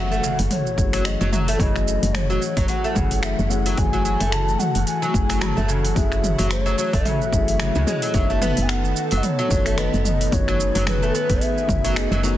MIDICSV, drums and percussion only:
0, 0, Header, 1, 2, 480
1, 0, Start_track
1, 0, Tempo, 545455
1, 1405, Time_signature, 4, 2, 24, 8
1, 10889, End_track
2, 0, Start_track
2, 0, Title_t, "Drums"
2, 107, Note_on_c, 9, 82, 21
2, 195, Note_off_c, 9, 82, 0
2, 209, Note_on_c, 9, 82, 87
2, 297, Note_off_c, 9, 82, 0
2, 342, Note_on_c, 9, 46, 57
2, 347, Note_on_c, 9, 82, 31
2, 430, Note_off_c, 9, 46, 0
2, 435, Note_off_c, 9, 82, 0
2, 447, Note_on_c, 9, 45, 77
2, 447, Note_on_c, 9, 46, 44
2, 452, Note_on_c, 9, 82, 44
2, 535, Note_off_c, 9, 45, 0
2, 535, Note_off_c, 9, 46, 0
2, 540, Note_off_c, 9, 82, 0
2, 586, Note_on_c, 9, 82, 23
2, 674, Note_off_c, 9, 82, 0
2, 685, Note_on_c, 9, 36, 97
2, 688, Note_on_c, 9, 82, 81
2, 773, Note_off_c, 9, 36, 0
2, 776, Note_off_c, 9, 82, 0
2, 821, Note_on_c, 9, 26, 33
2, 821, Note_on_c, 9, 46, 61
2, 826, Note_on_c, 9, 82, 34
2, 909, Note_off_c, 9, 26, 0
2, 909, Note_off_c, 9, 46, 0
2, 914, Note_off_c, 9, 82, 0
2, 924, Note_on_c, 9, 26, 102
2, 924, Note_on_c, 9, 46, 46
2, 929, Note_on_c, 9, 82, 46
2, 1012, Note_off_c, 9, 26, 0
2, 1012, Note_off_c, 9, 46, 0
2, 1017, Note_off_c, 9, 82, 0
2, 1068, Note_on_c, 9, 82, 22
2, 1156, Note_off_c, 9, 82, 0
2, 1167, Note_on_c, 9, 45, 76
2, 1172, Note_on_c, 9, 82, 73
2, 1255, Note_off_c, 9, 45, 0
2, 1260, Note_off_c, 9, 82, 0
2, 1303, Note_on_c, 9, 46, 61
2, 1308, Note_on_c, 9, 82, 35
2, 1391, Note_off_c, 9, 46, 0
2, 1396, Note_off_c, 9, 82, 0
2, 1405, Note_on_c, 9, 36, 119
2, 1408, Note_on_c, 9, 46, 47
2, 1413, Note_on_c, 9, 82, 46
2, 1493, Note_off_c, 9, 36, 0
2, 1496, Note_off_c, 9, 46, 0
2, 1501, Note_off_c, 9, 82, 0
2, 1545, Note_on_c, 9, 26, 32
2, 1550, Note_on_c, 9, 82, 23
2, 1633, Note_off_c, 9, 26, 0
2, 1638, Note_off_c, 9, 82, 0
2, 1653, Note_on_c, 9, 82, 87
2, 1741, Note_off_c, 9, 82, 0
2, 1786, Note_on_c, 9, 46, 53
2, 1791, Note_on_c, 9, 82, 33
2, 1874, Note_off_c, 9, 46, 0
2, 1879, Note_off_c, 9, 82, 0
2, 1889, Note_on_c, 9, 26, 98
2, 1889, Note_on_c, 9, 45, 75
2, 1889, Note_on_c, 9, 46, 45
2, 1894, Note_on_c, 9, 82, 46
2, 1977, Note_off_c, 9, 26, 0
2, 1977, Note_off_c, 9, 45, 0
2, 1977, Note_off_c, 9, 46, 0
2, 1982, Note_off_c, 9, 82, 0
2, 2029, Note_on_c, 9, 82, 23
2, 2117, Note_off_c, 9, 82, 0
2, 2130, Note_on_c, 9, 82, 91
2, 2218, Note_off_c, 9, 82, 0
2, 2260, Note_on_c, 9, 36, 104
2, 2260, Note_on_c, 9, 46, 54
2, 2265, Note_on_c, 9, 82, 32
2, 2348, Note_off_c, 9, 36, 0
2, 2348, Note_off_c, 9, 46, 0
2, 2353, Note_off_c, 9, 82, 0
2, 2360, Note_on_c, 9, 46, 43
2, 2365, Note_on_c, 9, 82, 41
2, 2448, Note_off_c, 9, 46, 0
2, 2453, Note_off_c, 9, 82, 0
2, 2504, Note_on_c, 9, 82, 25
2, 2592, Note_off_c, 9, 82, 0
2, 2600, Note_on_c, 9, 45, 81
2, 2605, Note_on_c, 9, 36, 103
2, 2605, Note_on_c, 9, 82, 79
2, 2688, Note_off_c, 9, 45, 0
2, 2693, Note_off_c, 9, 36, 0
2, 2693, Note_off_c, 9, 82, 0
2, 2737, Note_on_c, 9, 46, 60
2, 2742, Note_on_c, 9, 82, 37
2, 2825, Note_off_c, 9, 46, 0
2, 2830, Note_off_c, 9, 82, 0
2, 2840, Note_on_c, 9, 26, 103
2, 2840, Note_on_c, 9, 46, 44
2, 2845, Note_on_c, 9, 82, 49
2, 2928, Note_off_c, 9, 26, 0
2, 2928, Note_off_c, 9, 46, 0
2, 2933, Note_off_c, 9, 82, 0
2, 2984, Note_on_c, 9, 82, 23
2, 3072, Note_off_c, 9, 82, 0
2, 3087, Note_on_c, 9, 82, 76
2, 3175, Note_off_c, 9, 82, 0
2, 3219, Note_on_c, 9, 46, 56
2, 3224, Note_on_c, 9, 82, 36
2, 3307, Note_off_c, 9, 46, 0
2, 3312, Note_off_c, 9, 82, 0
2, 3322, Note_on_c, 9, 45, 78
2, 3322, Note_on_c, 9, 46, 43
2, 3324, Note_on_c, 9, 36, 127
2, 3327, Note_on_c, 9, 82, 47
2, 3410, Note_off_c, 9, 45, 0
2, 3410, Note_off_c, 9, 46, 0
2, 3412, Note_off_c, 9, 36, 0
2, 3415, Note_off_c, 9, 82, 0
2, 3463, Note_on_c, 9, 82, 24
2, 3551, Note_off_c, 9, 82, 0
2, 3567, Note_on_c, 9, 82, 78
2, 3655, Note_off_c, 9, 82, 0
2, 3700, Note_on_c, 9, 46, 53
2, 3706, Note_on_c, 9, 82, 35
2, 3788, Note_off_c, 9, 46, 0
2, 3794, Note_off_c, 9, 82, 0
2, 3804, Note_on_c, 9, 26, 100
2, 3804, Note_on_c, 9, 46, 43
2, 3809, Note_on_c, 9, 82, 45
2, 3892, Note_off_c, 9, 26, 0
2, 3892, Note_off_c, 9, 46, 0
2, 3897, Note_off_c, 9, 82, 0
2, 3946, Note_on_c, 9, 82, 22
2, 4034, Note_off_c, 9, 82, 0
2, 4044, Note_on_c, 9, 45, 79
2, 4049, Note_on_c, 9, 82, 86
2, 4132, Note_off_c, 9, 45, 0
2, 4137, Note_off_c, 9, 82, 0
2, 4181, Note_on_c, 9, 46, 51
2, 4186, Note_on_c, 9, 82, 33
2, 4269, Note_off_c, 9, 46, 0
2, 4274, Note_off_c, 9, 82, 0
2, 4285, Note_on_c, 9, 46, 41
2, 4290, Note_on_c, 9, 82, 44
2, 4373, Note_off_c, 9, 46, 0
2, 4378, Note_off_c, 9, 82, 0
2, 4426, Note_on_c, 9, 82, 24
2, 4514, Note_off_c, 9, 82, 0
2, 4525, Note_on_c, 9, 36, 109
2, 4530, Note_on_c, 9, 82, 84
2, 4613, Note_off_c, 9, 36, 0
2, 4618, Note_off_c, 9, 82, 0
2, 4662, Note_on_c, 9, 26, 34
2, 4662, Note_on_c, 9, 46, 54
2, 4667, Note_on_c, 9, 82, 35
2, 4750, Note_off_c, 9, 26, 0
2, 4750, Note_off_c, 9, 46, 0
2, 4755, Note_off_c, 9, 82, 0
2, 4764, Note_on_c, 9, 26, 110
2, 4764, Note_on_c, 9, 45, 76
2, 4764, Note_on_c, 9, 46, 44
2, 4770, Note_on_c, 9, 82, 46
2, 4852, Note_off_c, 9, 26, 0
2, 4852, Note_off_c, 9, 45, 0
2, 4852, Note_off_c, 9, 46, 0
2, 4858, Note_off_c, 9, 82, 0
2, 4906, Note_on_c, 9, 82, 24
2, 4994, Note_off_c, 9, 82, 0
2, 5009, Note_on_c, 9, 82, 82
2, 5097, Note_off_c, 9, 82, 0
2, 5144, Note_on_c, 9, 46, 53
2, 5149, Note_on_c, 9, 82, 34
2, 5232, Note_off_c, 9, 46, 0
2, 5237, Note_off_c, 9, 82, 0
2, 5245, Note_on_c, 9, 36, 122
2, 5247, Note_on_c, 9, 46, 44
2, 5252, Note_on_c, 9, 82, 45
2, 5333, Note_off_c, 9, 36, 0
2, 5335, Note_off_c, 9, 46, 0
2, 5340, Note_off_c, 9, 82, 0
2, 5383, Note_on_c, 9, 26, 31
2, 5388, Note_on_c, 9, 82, 25
2, 5471, Note_off_c, 9, 26, 0
2, 5476, Note_off_c, 9, 82, 0
2, 5487, Note_on_c, 9, 45, 77
2, 5492, Note_on_c, 9, 82, 79
2, 5575, Note_off_c, 9, 45, 0
2, 5580, Note_off_c, 9, 82, 0
2, 5624, Note_on_c, 9, 46, 52
2, 5629, Note_on_c, 9, 82, 31
2, 5712, Note_off_c, 9, 46, 0
2, 5717, Note_off_c, 9, 82, 0
2, 5725, Note_on_c, 9, 26, 97
2, 5725, Note_on_c, 9, 46, 41
2, 5730, Note_on_c, 9, 82, 47
2, 5813, Note_off_c, 9, 26, 0
2, 5813, Note_off_c, 9, 46, 0
2, 5818, Note_off_c, 9, 82, 0
2, 5867, Note_on_c, 9, 82, 22
2, 5955, Note_off_c, 9, 82, 0
2, 5972, Note_on_c, 9, 82, 89
2, 6060, Note_off_c, 9, 82, 0
2, 6102, Note_on_c, 9, 36, 106
2, 6103, Note_on_c, 9, 46, 55
2, 6108, Note_on_c, 9, 82, 34
2, 6190, Note_off_c, 9, 36, 0
2, 6191, Note_off_c, 9, 46, 0
2, 6196, Note_off_c, 9, 82, 0
2, 6208, Note_on_c, 9, 45, 74
2, 6208, Note_on_c, 9, 46, 38
2, 6213, Note_on_c, 9, 82, 46
2, 6296, Note_off_c, 9, 45, 0
2, 6296, Note_off_c, 9, 46, 0
2, 6301, Note_off_c, 9, 82, 0
2, 6350, Note_on_c, 9, 82, 23
2, 6438, Note_off_c, 9, 82, 0
2, 6446, Note_on_c, 9, 36, 100
2, 6453, Note_on_c, 9, 82, 88
2, 6534, Note_off_c, 9, 36, 0
2, 6541, Note_off_c, 9, 82, 0
2, 6583, Note_on_c, 9, 46, 55
2, 6588, Note_on_c, 9, 82, 38
2, 6671, Note_off_c, 9, 46, 0
2, 6676, Note_off_c, 9, 82, 0
2, 6684, Note_on_c, 9, 26, 100
2, 6684, Note_on_c, 9, 46, 43
2, 6689, Note_on_c, 9, 82, 44
2, 6772, Note_off_c, 9, 26, 0
2, 6772, Note_off_c, 9, 46, 0
2, 6777, Note_off_c, 9, 82, 0
2, 6822, Note_on_c, 9, 82, 25
2, 6910, Note_off_c, 9, 82, 0
2, 6925, Note_on_c, 9, 45, 71
2, 6930, Note_on_c, 9, 82, 78
2, 7013, Note_off_c, 9, 45, 0
2, 7018, Note_off_c, 9, 82, 0
2, 7060, Note_on_c, 9, 46, 54
2, 7065, Note_on_c, 9, 82, 37
2, 7148, Note_off_c, 9, 46, 0
2, 7153, Note_off_c, 9, 82, 0
2, 7162, Note_on_c, 9, 46, 42
2, 7165, Note_on_c, 9, 36, 116
2, 7167, Note_on_c, 9, 82, 47
2, 7250, Note_off_c, 9, 46, 0
2, 7253, Note_off_c, 9, 36, 0
2, 7255, Note_off_c, 9, 82, 0
2, 7306, Note_on_c, 9, 82, 22
2, 7394, Note_off_c, 9, 82, 0
2, 7405, Note_on_c, 9, 45, 84
2, 7410, Note_on_c, 9, 82, 79
2, 7493, Note_off_c, 9, 45, 0
2, 7498, Note_off_c, 9, 82, 0
2, 7541, Note_on_c, 9, 46, 49
2, 7546, Note_on_c, 9, 82, 32
2, 7629, Note_off_c, 9, 46, 0
2, 7634, Note_off_c, 9, 82, 0
2, 7647, Note_on_c, 9, 26, 96
2, 7647, Note_on_c, 9, 46, 44
2, 7652, Note_on_c, 9, 82, 43
2, 7735, Note_off_c, 9, 26, 0
2, 7735, Note_off_c, 9, 46, 0
2, 7740, Note_off_c, 9, 82, 0
2, 7787, Note_on_c, 9, 82, 22
2, 7875, Note_off_c, 9, 82, 0
2, 7889, Note_on_c, 9, 82, 83
2, 7977, Note_off_c, 9, 82, 0
2, 8017, Note_on_c, 9, 46, 49
2, 8022, Note_on_c, 9, 82, 32
2, 8105, Note_off_c, 9, 46, 0
2, 8110, Note_off_c, 9, 82, 0
2, 8124, Note_on_c, 9, 45, 75
2, 8124, Note_on_c, 9, 46, 41
2, 8129, Note_on_c, 9, 82, 44
2, 8212, Note_off_c, 9, 45, 0
2, 8212, Note_off_c, 9, 46, 0
2, 8217, Note_off_c, 9, 82, 0
2, 8265, Note_on_c, 9, 82, 23
2, 8353, Note_off_c, 9, 82, 0
2, 8366, Note_on_c, 9, 36, 96
2, 8367, Note_on_c, 9, 82, 80
2, 8454, Note_off_c, 9, 36, 0
2, 8455, Note_off_c, 9, 82, 0
2, 8499, Note_on_c, 9, 26, 32
2, 8499, Note_on_c, 9, 46, 53
2, 8504, Note_on_c, 9, 82, 35
2, 8587, Note_off_c, 9, 26, 0
2, 8587, Note_off_c, 9, 46, 0
2, 8592, Note_off_c, 9, 82, 0
2, 8604, Note_on_c, 9, 26, 92
2, 8604, Note_on_c, 9, 46, 46
2, 8609, Note_on_c, 9, 82, 44
2, 8692, Note_off_c, 9, 26, 0
2, 8692, Note_off_c, 9, 46, 0
2, 8697, Note_off_c, 9, 82, 0
2, 8745, Note_on_c, 9, 82, 22
2, 8833, Note_off_c, 9, 82, 0
2, 8844, Note_on_c, 9, 45, 75
2, 8849, Note_on_c, 9, 82, 73
2, 8932, Note_off_c, 9, 45, 0
2, 8937, Note_off_c, 9, 82, 0
2, 8984, Note_on_c, 9, 46, 53
2, 8989, Note_on_c, 9, 82, 35
2, 9072, Note_off_c, 9, 46, 0
2, 9077, Note_off_c, 9, 82, 0
2, 9084, Note_on_c, 9, 46, 44
2, 9086, Note_on_c, 9, 36, 114
2, 9089, Note_on_c, 9, 82, 47
2, 9172, Note_off_c, 9, 46, 0
2, 9174, Note_off_c, 9, 36, 0
2, 9177, Note_off_c, 9, 82, 0
2, 9223, Note_on_c, 9, 26, 30
2, 9228, Note_on_c, 9, 82, 23
2, 9311, Note_off_c, 9, 26, 0
2, 9316, Note_off_c, 9, 82, 0
2, 9331, Note_on_c, 9, 82, 77
2, 9419, Note_off_c, 9, 82, 0
2, 9463, Note_on_c, 9, 46, 53
2, 9468, Note_on_c, 9, 82, 31
2, 9551, Note_off_c, 9, 46, 0
2, 9556, Note_off_c, 9, 82, 0
2, 9564, Note_on_c, 9, 26, 98
2, 9564, Note_on_c, 9, 45, 80
2, 9564, Note_on_c, 9, 46, 47
2, 9569, Note_on_c, 9, 82, 43
2, 9652, Note_off_c, 9, 26, 0
2, 9652, Note_off_c, 9, 45, 0
2, 9652, Note_off_c, 9, 46, 0
2, 9657, Note_off_c, 9, 82, 0
2, 9705, Note_on_c, 9, 82, 20
2, 9793, Note_off_c, 9, 82, 0
2, 9811, Note_on_c, 9, 82, 82
2, 9899, Note_off_c, 9, 82, 0
2, 9940, Note_on_c, 9, 46, 57
2, 9941, Note_on_c, 9, 36, 101
2, 9945, Note_on_c, 9, 82, 32
2, 10028, Note_off_c, 9, 46, 0
2, 10029, Note_off_c, 9, 36, 0
2, 10033, Note_off_c, 9, 82, 0
2, 10044, Note_on_c, 9, 46, 44
2, 10050, Note_on_c, 9, 82, 41
2, 10132, Note_off_c, 9, 46, 0
2, 10138, Note_off_c, 9, 82, 0
2, 10188, Note_on_c, 9, 82, 23
2, 10276, Note_off_c, 9, 82, 0
2, 10285, Note_on_c, 9, 36, 94
2, 10285, Note_on_c, 9, 45, 85
2, 10290, Note_on_c, 9, 82, 76
2, 10373, Note_off_c, 9, 36, 0
2, 10373, Note_off_c, 9, 45, 0
2, 10378, Note_off_c, 9, 82, 0
2, 10424, Note_on_c, 9, 46, 55
2, 10429, Note_on_c, 9, 82, 33
2, 10512, Note_off_c, 9, 46, 0
2, 10517, Note_off_c, 9, 82, 0
2, 10528, Note_on_c, 9, 26, 97
2, 10528, Note_on_c, 9, 46, 46
2, 10533, Note_on_c, 9, 82, 45
2, 10616, Note_off_c, 9, 26, 0
2, 10616, Note_off_c, 9, 46, 0
2, 10621, Note_off_c, 9, 82, 0
2, 10669, Note_on_c, 9, 82, 22
2, 10757, Note_off_c, 9, 82, 0
2, 10772, Note_on_c, 9, 82, 74
2, 10860, Note_off_c, 9, 82, 0
2, 10889, End_track
0, 0, End_of_file